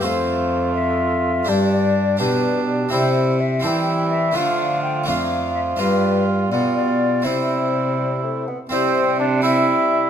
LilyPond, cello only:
\new Staff \with { instrumentName = "Cello" } { \clef bass \time 6/8 \key c \major \tempo 4. = 83 f,2. | g,4. b,4. | c4. e4. | d4. f,4. |
g,4. b,4. | c2~ c8 r8 | c2. | }